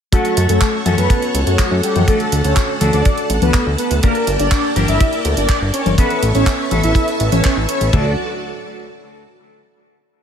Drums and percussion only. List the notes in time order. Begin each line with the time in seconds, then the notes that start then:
0.12 kick, closed hi-hat
0.25 closed hi-hat
0.37 closed hi-hat
0.49 closed hi-hat
0.61 kick, clap, closed hi-hat
0.86 closed hi-hat, high tom
0.98 closed hi-hat
1.10 kick, closed hi-hat
1.22 closed hi-hat
1.35 closed hi-hat
1.47 closed hi-hat
1.59 kick, clap, closed hi-hat
1.83 closed hi-hat
1.96 closed hi-hat, high tom
2.08 kick, closed hi-hat
2.20 closed hi-hat
2.32 closed hi-hat
2.44 closed hi-hat
2.57 kick, clap, closed hi-hat
2.81 closed hi-hat, high tom
2.93 closed hi-hat
3.05 kick, closed hi-hat
3.18 closed hi-hat
3.30 closed hi-hat
3.42 closed hi-hat, high tom
3.54 kick, clap, closed hi-hat
3.78 closed hi-hat
3.91 closed hi-hat
4.03 kick, closed hi-hat
4.15 closed hi-hat
4.27 closed hi-hat
4.40 closed hi-hat
4.51 kick, clap, closed hi-hat
4.76 closed hi-hat, high tom
4.88 closed hi-hat
5.01 kick, closed hi-hat
5.13 closed hi-hat
5.25 closed hi-hat
5.37 closed hi-hat
5.49 kick, clap, closed hi-hat
5.74 closed hi-hat
5.86 closed hi-hat, high tom
5.98 kick, closed hi-hat
6.10 closed hi-hat
6.23 closed hi-hat
6.35 closed hi-hat
6.46 kick, clap, closed hi-hat
6.71 closed hi-hat, high tom
6.84 closed hi-hat
6.95 kick, closed hi-hat
7.08 closed hi-hat
7.20 closed hi-hat
7.32 closed hi-hat, high tom
7.44 kick, clap, closed hi-hat
7.69 closed hi-hat
7.81 closed hi-hat
7.93 kick, floor tom, ride bell